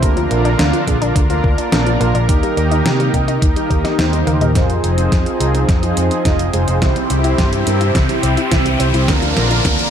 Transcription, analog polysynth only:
0.02 A#3 D4 F4 A#4
0.45 A#3 D4 F4 A#4
0.87 A#3 D4 F4 G#4
1.30 A#3 D4 F4 A#4
1.72 A#3 D4 F4 D5
2.00 A#3 D4 F4 A#4
2.29 A#3 D#4 G4 A#4
2.71 A#3 D#4 G4 A#4
3.14 A#3 D#4 G4 A#4
3.56 A#3 D#4 G4 A#4
3.99 A#3 D#4 G4 C5
4.41 A#3 D#4 G4 A#4
4.55 D#4 F4 G#4 C5
4.98 D#4 F4 G#4 C5
5.40 D#4 F4 G#4 A#4
5.83 D#4 F4 G#4 C5
6.25 D#4 F4 G#4 D#5
6.53 D#4 F4 G#4 C5
6.82 C4 E4 G4 C5
7.24 C4 E4 G4 C5
7.67 C4 E4 G4 A#4
8.09 C4 E4 G4 C5
8.52 C4 E4 G4 E5
8.80 C4 E4 G4 C5
9.08 A#3 D4 F4 A#4
9.51 A#3 D4 F4 A#4

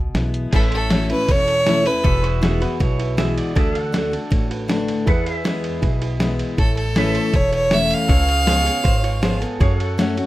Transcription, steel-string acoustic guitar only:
Already playing: B2
0.15 E3 G#3 B3 E4
0.53 A2
0.90 E3 A3 C#4 E4
1.09 C#4 E4
1.29 E2
1.66 E3 A3 C#4 E4
1.85 C#4 E4
2.04 E2
2.42 E3 G#3 B3 F#4
2.60 B3 F#4
2.80 B2
3.17 E3 G#3 B3 F#4
3.55 D3
3.92 D3 A3 D4 F#4
4.11 D4 F#4
4.30 A2
4.68 D3 A3 D4 F#4
5.07 E2
5.44 E3 G#3 B3 E4
5.82 B2
6.20 E3 G#3 B3 E4
6.58 A2
6.96 E3 A3 C#4 E4
7.34 E2
7.71 E3 A3 C#4 E4
8.08 C#3
8.45 F3 G#3 B3 G#4
8.65 B3 G#4
8.85 G#2
9.21 F3 G#3 B3 G#4
9.41 B3 G#4
9.60 F#2
9.98 F#3 A3 C#4 F#4
10.17 C#4 F#4

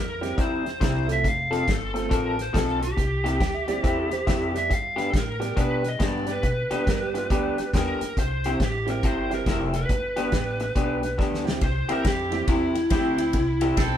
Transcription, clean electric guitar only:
0.21 muted clean electric guitar stroke
0.37 C3 G3 C4 E4
0.65 muted clean electric guitar stroke
0.80 C3 G3 C4 E4
1.08 muted clean electric guitar stroke
1.24 muted clean electric guitar stroke
1.51 F3 C4 F4 A4
1.67 muted clean electric guitar stroke
1.94 muted clean electric guitar stroke
2.09 F3 C4 F4 A4
2.37 muted clean electric guitar stroke
2.53 F3 C4 F4 A4
2.81 muted clean electric guitar stroke
2.97 muted clean electric guitar stroke
3.24 C3 C4 E4 G4
3.40 muted clean electric guitar stroke
3.68 muted clean electric guitar stroke
3.83 C3 C4 E4 G4
4.10 muted clean electric guitar stroke
4.26 C3 C4 E4 G4
4.53 muted clean electric guitar stroke
4.69 muted clean electric guitar stroke
4.96 G3 B3 D4 G4
5.12 muted clean electric guitar stroke
5.40 muted clean electric guitar stroke
5.56 G3 B3 D4 G4
5.84 muted clean electric guitar stroke
5.99 G3 B3 D4 G4
6.27 muted clean electric guitar stroke
6.43 muted clean electric guitar stroke
6.71 G3 B3 D4 G4
6.86 muted clean electric guitar stroke
7.14 muted clean electric guitar stroke
7.30 G3 B3 D4 G4
7.59 muted clean electric guitar stroke
7.74 G3 B3 D4 G4
8.02 muted clean electric guitar stroke
8.18 muted clean electric guitar stroke
8.46 C3 C4 E4 G4
8.62 muted clean electric guitar stroke
8.89 muted clean electric guitar stroke
9.04 C3 C4 E4 G4
9.31 muted clean electric guitar stroke
9.47 C3 C4 E4 G4
9.74 muted clean electric guitar stroke
9.90 muted clean electric guitar stroke
10.16 G3 B3 D4 G4
10.33 muted clean electric guitar stroke
10.61 muted clean electric guitar stroke
10.75 G3 B3 D4 G4
11.03 muted clean electric guitar stroke
11.18 G3 B3 D4 G4
11.46 muted clean electric guitar stroke
11.62 muted clean electric guitar stroke
11.89 C3 C4 E4 G4
12.05 muted clean electric guitar stroke
12.33 muted clean electric guitar stroke
12.48 C3 C4 E4 G4
12.75 muted clean electric guitar stroke
12.91 C3 C4 E4 G4
13.19 muted clean electric guitar stroke
13.34 muted clean electric guitar stroke
13.62 C3 C4 E4 G4
13.78 muted clean electric guitar stroke

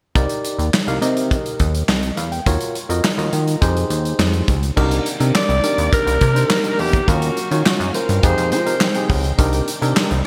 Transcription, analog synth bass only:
0.15 C2
0.58 D#2
0.88 C2
1.02 C3
1.60 D#2
1.88 C2
2.17 E2
2.46 D#2
2.89 F2
3.18 D#2
3.33 D#3
3.62 F2
3.90 D#2
4.19 F2
4.48 C#2
4.77 C2
5.20 C3
5.49 C2
5.78 D#2
6.07 C2
6.21 C3
6.79 E2
7.08 D#2
7.51 D#3
7.80 F#2
8.09 G2
8.23 F2
8.37 F2
8.52 F3
9.10 C#2
9.38 C2
9.82 C3
10.11 C2

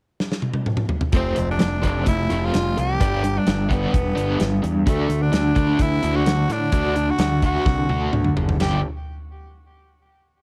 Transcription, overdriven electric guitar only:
1.13 F3 A3 C4
1.36 F3 A3
1.59 F3 A3
1.82 F3 A3 C4
2.07 F3 A3
2.30 F3 A3 C4
2.54 F3 A3
2.77 F3 A3
3.00 G3 B3 D4
3.24 G3 D4
3.47 G3 D4
3.69 G3 B3 D4
3.93 G3 D4
4.15 G3 B3 D4
4.40 G3 D4
4.63 G3 D4
4.86 D3 D4 F#4
5.09 D3 D4
5.32 D3 D4
5.55 D3 D4 F#4
5.79 D3 D4
6.03 D3 D4 F#4
6.26 D3 D4
6.49 D3 D4
6.73 D3 D4 F#4
6.96 D3 D4
7.20 D3 D4
7.43 D3 D4 F#4
7.66 D3 D4
7.89 D3 D4 F#4
8.12 D3 D4
8.37 D3 D4
8.60 G2 D3 G3 B3 D4 G4

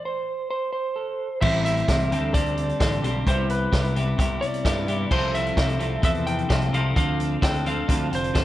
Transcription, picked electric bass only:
1.42 A1
1.88 C2
2.11 D2
2.81 A1
3.02 B1
3.26 C2
3.72 C2
4.19 C2
4.65 G2
5.11 C2
5.57 C2
6.03 E2
6.50 C2
6.72 C2
6.96 D2
7.42 D2
7.89 D2
8.11 F1
8.35 G1

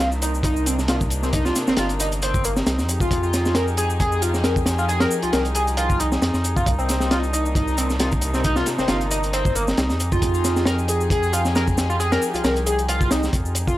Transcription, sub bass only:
Already playing: C2
1.68 G1
1.78 G1
2.67 C2
2.79 F2
3.11 F2
5.23 C2
5.33 C2
6.22 F2
6.34 F2
6.66 C2
8.79 G1
8.89 G1
9.78 C2
9.90 F2
10.22 F2
12.34 C2
12.44 C2
13.33 F2
13.45 F2

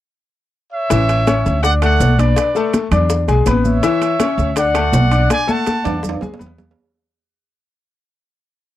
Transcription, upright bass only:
0.91 A1
1.46 D2
2.00 B1
2.91 E2
3.28 B1
3.47 A1
4.38 D2
4.92 B1
5.85 E2
6.22 D2
6.40 E2

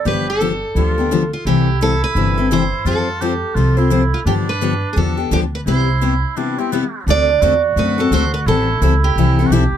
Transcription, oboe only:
0.06 G4
0.76 F4
1.46 E4
2.85 F4
3.21 G4
3.55 F4
3.77 E4
4.26 D4
5.66 E4
6.37 D4
6.59 C4
6.72 B3
7.07 D4
7.42 F#4
8.46 E4
9.46 F#4
9.52 G4

